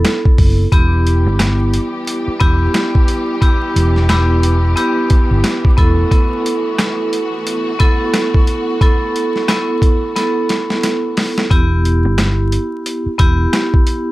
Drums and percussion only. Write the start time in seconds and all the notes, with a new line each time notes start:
0.05 finger snap, cross-stick, snare, closed hi-hat
0.25 kick
0.38 kick, open hi-hat
0.72 kick, closed hi-hat
1.07 closed hi-hat
1.39 finger snap, cross-stick, snare, closed hi-hat
1.74 closed hi-hat
2.07 closed hi-hat
2.40 kick, closed hi-hat
2.74 finger snap, cross-stick, snare, closed hi-hat
2.95 kick
3.08 closed hi-hat
3.42 kick, closed hi-hat
3.76 closed hi-hat
3.96 snare
4.09 finger snap, cross-stick, snare, closed hi-hat
4.43 closed hi-hat
4.77 closed hi-hat
5.10 kick, closed hi-hat
5.44 finger snap, cross-stick, snare, closed hi-hat
5.65 kick
5.78 kick, closed hi-hat
6.11 kick, closed hi-hat
6.46 closed hi-hat
6.79 finger snap, cross-stick, snare, closed hi-hat
7.13 closed hi-hat
7.47 closed hi-hat
7.80 kick, closed hi-hat
8.14 finger snap, cross-stick, snare, closed hi-hat
8.34 kick
8.47 closed hi-hat
8.81 kick, closed hi-hat
9.16 closed hi-hat
9.36 snare
9.48 finger snap, cross-stick, snare, closed hi-hat
9.82 kick, closed hi-hat
10.16 snare, closed hi-hat
10.49 snare, closed hi-hat
10.70 snare
10.83 finger snap, snare, closed hi-hat
11.17 snare, open hi-hat
11.38 snare
11.51 kick, closed hi-hat
11.85 closed hi-hat
12.18 finger snap, cross-stick, snare, closed hi-hat
12.52 closed hi-hat
12.86 closed hi-hat
13.19 kick, closed hi-hat
13.53 finger snap, cross-stick, snare, closed hi-hat
13.74 kick
13.87 closed hi-hat